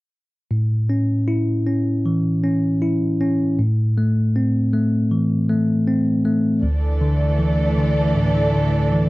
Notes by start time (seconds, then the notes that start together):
0.51 A2
0.90 C#4
1.28 E4
1.67 C#4
2.06 E3
2.44 C#4
2.82 E4
3.21 C#4
3.59 A2
3.98 A3
4.36 C4
4.73 A3
5.11 E3
5.49 A3
5.88 C4
6.25 A3
6.63 D2 E3 A3 D4 A4 D5
7.01 D3
7.39 E3
7.77 D3
8.15 A2
8.53 D3
8.92 E3